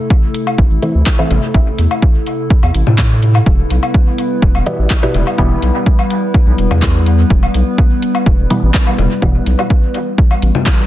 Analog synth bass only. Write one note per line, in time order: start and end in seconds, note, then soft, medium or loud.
0.58 0.67 A1 medium
0.71 0.79 A1 medium
0.95 1.03 D2 medium
1.30 1.39 A1 loud
1.54 1.71 A1 loud
1.79 1.87 E2 medium
2.63 2.71 E2 medium
2.75 2.83 A1 medium
2.87 3.41 A2 medium
3.46 3.63 E1 loud
3.71 3.79 B1 medium
4.42 4.51 E1 loud
4.55 4.63 E1 medium
4.79 4.87 A1 medium
5.14 5.23 E1 loud
5.38 5.55 E1 loud
5.63 5.71 B1 medium
6.47 6.55 B1 medium
6.58 6.67 E1 loud
6.71 7.25 E2 medium
7.30 7.47 E1 loud
7.55 7.63 B1 medium
8.26 8.35 E1 medium
8.39 8.47 E1 medium
8.63 8.71 A1 medium
8.98 9.07 E1 loud
9.22 9.39 E1 loud
9.46 9.55 B1 medium
10.42 10.51 A1 loud